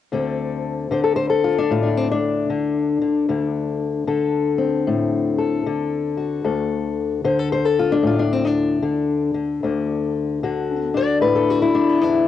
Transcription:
0.12 D2 D3 C4 A4
0.91 D3 C5
1.04 A4
1.16 C5
1.30 A4
1.44 F4
1.58 D4
1.71 A2 F4
1.83 D4
1.97 C4
2.12 D4
2.50 D3
3.01 D3
3.29 D2 D3
4.08 D3 A4
4.58 C4
4.87 A2
5.38 A4
5.66 D3
6.17 F#4
6.44 D2 A4
7.24 D3 C5
7.39 A4
7.52 C5
7.65 A4
7.79 F4
7.92 D4
8.03 A2
8.07 F4
8.19 D4
8.33 C4
8.45 D4
8.83 D3
9.34 D3
9.63 D2 D3
10.43 D3 F#4
10.94 D4 D5
11.21 A2 B4
11.36 A4
11.50 F#4
11.62 E4
11.75 D4
11.89 B3
12.01 E2 D4

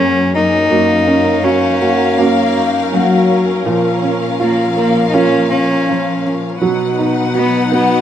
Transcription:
Already playing: F#2 F#3 A#3 C#4 G#4 A#4
0.35 A#3 D#4
0.70 F#2 A#3 C#4 F#4 F5
1.06 C#4
1.43 C#4 D#4 F#4
1.81 A#3 F#4
2.18 A#3 C#4 F#4
2.56 D#4
2.92 F#3 A#3 C#4
3.30 C#4
3.64 A#2 F3 F4 F5
4.02 C#4
4.40 A#3 F4
4.77 A#3 A#4
5.09 D#4
5.13 A#3 C#4 F4
5.50 C#4 F4
5.87 F3 C#4
6.26 C#4
6.61 B2 F#3 D#4 F#4 B4 F#5
6.99 B3 D#4
7.35 B3 D#4 F#4
7.72 B3 F#4

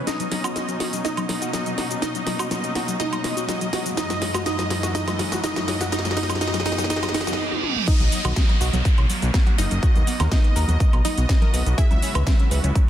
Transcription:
Already playing: C#4, riser
0.07 B2 F#3 A#3 D#4 D#5, snare, closed hi-hat, shaker
0.20 F#3, closed hi-hat, shaker
0.32 F#3, snare, open hi-hat
0.44 F#4, closed hi-hat, high woodblock, shaker
0.56 F#3, snare, closed hi-hat, shaker
0.69 F#3, closed hi-hat, shaker
0.80 F#4, snare, open hi-hat
0.93 F#3, closed hi-hat, shaker
1.05 D#4 D#5, snare, closed hi-hat, shaker
1.17 F#3, closed hi-hat, high woodblock, shaker
1.29 F#3, snare, open hi-hat
1.42 F#4, closed hi-hat, shaker
1.53 F#3, snare, closed hi-hat, shaker
1.66 F#3, closed hi-hat, shaker
1.78 F#4, snare, open hi-hat
1.91 F#3, closed hi-hat, shaker
2.02 D#4 D#5, snare, closed hi-hat, shaker
2.15 F#3, closed hi-hat, shaker
2.27 F#3, snare, open hi-hat
2.39 F#4, closed hi-hat, high woodblock, shaker
2.51 F#3, snare, closed hi-hat, shaker
2.64 F#3, closed hi-hat, shaker
2.75 F#4, snare, open hi-hat
2.88 F#3, closed hi-hat, shaker
2.99 D#4 D#5, snare, closed hi-hat, shaker
3.12 F#3, closed hi-hat, high woodblock, shaker
3.24 F#3, snare, open hi-hat
3.37 F#4, closed hi-hat, shaker
3.49 F#3, snare, closed hi-hat, shaker
3.61 F#3, closed hi-hat, shaker
3.73 F#4, snare, open hi-hat
3.86 F#3, closed hi-hat, shaker
3.97 F#2 E3 G#3 D#4 D#5, snare, closed hi-hat, shaker
4.10 F#3, snare, closed hi-hat, shaker
4.22 F#3, snare, open hi-hat
4.34 F#4, snare, closed hi-hat, high woodblock, shaker
4.46 D#4 D#5, snare, closed hi-hat, shaker
4.59 F#3, snare, closed hi-hat, shaker
4.70 F#3, snare, open hi-hat
4.83 F#4, snare, closed hi-hat, shaker
4.95 D#4 D#5, snare, closed hi-hat, shaker
5.07 F#3, snare, closed hi-hat, high woodblock, shaker
5.19 F#3, snare, open hi-hat
5.32 F#4, snare, closed hi-hat, shaker
5.44 D#4 D#5, snare, closed hi-hat, shaker
5.56 F#3, snare, closed hi-hat, shaker
5.68 F#3, snare, open hi-hat
5.81 F#4, snare, closed hi-hat, shaker
5.92 D#4 D#5, snare, closed hi-hat, shaker
5.99 snare
6.05 F#3, snare, closed hi-hat, shaker
6.11 snare
6.16 D#4 D#5, snare, open hi-hat
6.23 snare
6.30 F#3, snare, closed hi-hat, high woodblock, shaker
6.35 snare
6.41 D#4 D#5, snare, closed hi-hat, shaker
6.48 snare
6.54 F#3, snare, closed hi-hat, shaker
6.60 snare
6.65 D#4 D#5, snare, open hi-hat
6.72 snare
6.78 F#3, snare, closed hi-hat, shaker
6.84 snare
6.90 D#4 D#5, snare, closed hi-hat, reverse cymbal, shaker
6.96 snare
7.03 F#3, snare, closed hi-hat, high woodblock, shaker
7.09 snare
7.14 D#4 D#5, snare, open hi-hat
7.21 snare
7.27 F#3, snare, closed hi-hat, shaker
7.33 snare
7.52 high tom
7.63 mid tom
7.76 mid tom
7.88 A#3 B3 D#4 F#4 D#5, kick, closed hi-hat, crash, downlifter, shaker
8.00 B1 F#3, closed hi-hat, high conga, shaker
8.12 F#3, open hi-hat, high woodblock, shaker
8.25 B1 F#4, closed hi-hat, low conga, high woodblock, shaker
8.36 F#3, kick, snare, closed hi-hat, high conga, shaker
8.49 F#3, closed hi-hat, high woodblock
8.61 B1 F#4, open hi-hat, shaker
8.73 B1 F#3, closed hi-hat, high conga, shaker
8.85 F#3, kick, closed hi-hat, shaker
8.98 B1 F#3, closed hi-hat, high woodblock
9.10 open hi-hat, high conga, shaker
9.22 B1 F#3, closed hi-hat, shaker
9.34 F#3, kick, snare, closed hi-hat, high woodblock, shaker
9.47 F#4, closed hi-hat, high conga
9.58 F#1 F#3 D#4 D#5, open hi-hat, shaker
9.71 F#1 F#3, closed hi-hat, shaker
9.83 F#4, kick, closed hi-hat, high woodblock, shaker
9.96 D#2 B3, closed hi-hat, high conga, shaker
10.07 B3, open hi-hat, shaker
10.20 D#2 A#4, snare, closed hi-hat, low conga, high woodblock, shaker
10.31 B3 D#4 D#5, kick, snare, closed hi-hat, high conga, shaker
10.44 B3, closed hi-hat
10.56 D#2 A#4, open hi-hat, shaker
10.68 D#2 B3, closed hi-hat, high conga, high woodblock, shaker
10.80 B3, kick, closed hi-hat, shaker
10.93 B1 B3, closed hi-hat, high woodblock
11.05 D#4 D#5, open hi-hat, high conga, high woodblock, shaker
11.18 B1 B3, closed hi-hat, shaker
11.29 B3, kick, snare, closed hi-hat, shaker
11.42 A#4, closed hi-hat, high conga
11.53 B1 B3, open hi-hat, high woodblock, shaker
11.66 B1 B3, closed hi-hat, shaker
11.78 C#3 E3 G#3 E4 G#4 E5, kick, closed hi-hat, shaker
11.90 C#2 C#4, closed hi-hat, high conga, high woodblock, shaker
12.02 C#4, open hi-hat, shaker
12.15 C#2 B4, closed hi-hat, low conga, high woodblock, shaker
12.27 C#4, kick, snare, closed hi-hat, high conga, shaker
12.39 C#4, closed hi-hat, high woodblock
12.51 C#2 B4, open hi-hat, shaker
12.64 C#2 C#4, closed hi-hat, high conga, shaker
12.75 C#4, kick, closed hi-hat, high woodblock, shaker

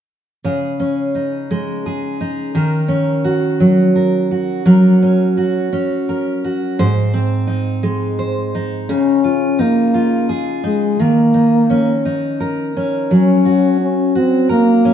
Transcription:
0.44 C#3 G#4
0.80 C#4
1.15 D#4
1.51 G#3
1.86 G#4
2.21 D#4
2.55 D#3 A#4
2.88 C#4
3.24 F#4
3.60 F#3
3.95 A#4
4.31 F#4
4.66 F#3 A#4
5.03 C#4
5.37 F#4
5.73 C#4
6.09 A#4
6.44 F#4
6.79 G#2 C5
7.13 C4
7.47 D#4
7.83 G#3
8.19 C5
8.55 D#4
8.89 C#3 C#4
9.24 F4
9.59 A#3 D#4
9.94 F4
10.29 G#4
10.64 G#3 D#4
10.99 D#3 A#3
11.34 D#4
11.70 C#4
12.05 D#4
12.40 A#4
12.77 C#4
13.11 F#3 C#4
13.45 F#4
13.81 C#4
14.15 C4 F#4
14.49 A#3 A#4
14.85 C#4

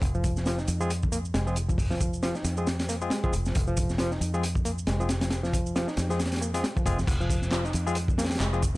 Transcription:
0.02 F1, kick, closed hi-hat, shaker
0.15 F3, shaker
0.24 kick, closed hi-hat, shaker
0.37 snare, shaker
0.46 F3, snare, closed hi-hat, shaker
0.58 D#4, snare, shaker
0.68 F2, closed hi-hat, shaker
0.81 F3 G#3 C4 F4 G#4, shaker
0.90 closed hi-hat, shaker
1.03 kick, shaker
1.12 A#3, closed hi-hat, shaker
1.25 shaker
1.34 F1 G#3, snare, closed hi-hat, shaker
1.47 F3 G#3 C4 F4 G#4, shaker
1.56 closed hi-hat, shaker
1.69 F3, kick, shaker
1.78 kick, open hi-hat, shaker
1.91 F3, snare, shaker
2.00 kick, closed hi-hat, shaker
2.13 shaker
2.23 F3, snare, closed hi-hat, shaker
2.35 D#4, snare, shaker
2.44 F2, snare, closed hi-hat, shaker
2.57 F3 G#3 C4 F4 G#4, shaker
2.67 snare, closed hi-hat, shaker
2.79 snare, closed hi-hat, shaker
2.89 A#3, snare, closed hi-hat, shaker
3.01 G#3 C4 F4 G#4, shaker
3.10 G#3, snare, closed hi-hat, shaker
3.23 F3 G#3 C4 F4 G#4, kick, shaker
3.33 F1, closed hi-hat, shaker
3.45 F3, snare, shaker
3.55 F1, kick, closed hi-hat, shaker
3.67 F3, shaker
3.77 kick, closed hi-hat, shaker
3.90 snare, shaker
3.98 F3, snare, closed hi-hat, shaker
4.11 D#4, snare, shaker
4.21 F2, closed hi-hat, shaker
4.34 F3 G#3 C4 F4 G#4, shaker
4.43 closed hi-hat, shaker
4.55 kick, shaker
4.65 A#3, closed hi-hat, shaker
4.78 shaker
4.87 F1 G#3, snare, closed hi-hat, shaker
5.00 F3 G#3 C4 F4 G#4, shaker
5.09 snare, closed hi-hat, shaker
5.21 F3, snare, closed hi-hat, shaker
5.30 snare, closed hi-hat, shaker
5.43 F3, snare, shaker
5.53 kick, closed hi-hat, shaker
5.66 shaker
5.75 F3, snare, closed hi-hat, shaker
5.88 D#4, snare, shaker
5.97 F2, snare, closed hi-hat, shaker
6.09 F3 G#3 C4 F4 G#4, snare, shaker
6.19 snare, closed hi-hat, shaker
6.25 snare, closed hi-hat
6.32 snare, closed hi-hat, shaker
6.36 snare, closed hi-hat
6.41 A#3, snare, shaker
6.54 G#3 C4 F4 G#4, snare, closed hi-hat, shaker
6.64 G#3, snare, closed hi-hat, shaker
6.76 F3, kick, shaker
6.86 F1 G#3 C4 F4 G#4, kick, closed hi-hat, shaker
6.98 F3, snare, shaker
7.07 F1, kick, closed hi-hat, crash, shaker
7.20 F3, shaker
7.30 kick, closed hi-hat, shaker
7.42 snare, shaker
7.51 F3, snare, clap, closed hi-hat, shaker
7.64 D#4, snare, shaker
7.73 F2, closed hi-hat, shaker
7.87 F3 G#3 C4 F4 G#4, shaker
7.95 closed hi-hat, shaker
8.08 kick, shaker
8.18 A#3, snare, closed hi-hat, shaker
8.24 snare, closed hi-hat
8.30 snare, closed hi-hat, shaker
8.35 snare, closed hi-hat
8.40 F1 G#3, snare, clap, closed hi-hat, shaker
8.53 F3 G#3 C4 F4 G#4, shaker
8.62 kick, closed hi-hat, shaker

